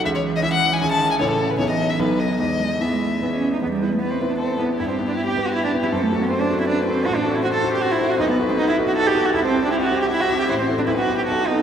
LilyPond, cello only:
\new Staff \with { instrumentName = "Cello" } { \time 3/4 \key e \major \tempo 4 = 156 e2 dis4 | cis4 e4 fis4 | gis4 b16 gis8 a16 b16 cis'8 dis'16 | \key e \minor b16 g8 a16 b16 c'8 d'16 c'8 b8 |
e'16 c'8 d'16 e'16 g'8 fis'16 e'16 d'8 e'16 | c'16 a8 b16 c'16 d'8 e'16 d'8 c'8 | fis'16 d'8 e'16 fis'16 a'8 g'16 fis'16 e'8 fis'16 | dis'16 b8 c'16 dis'16 e'8 fis'16 a'16 g'8 fis'16 |
e'16 c'8 d'16 e'16 fis'8 g'16 e'16 fis'8 g'16 | e'16 c'8 d'16 e'16 fis'8 g'16 fis'8 dis'8 | }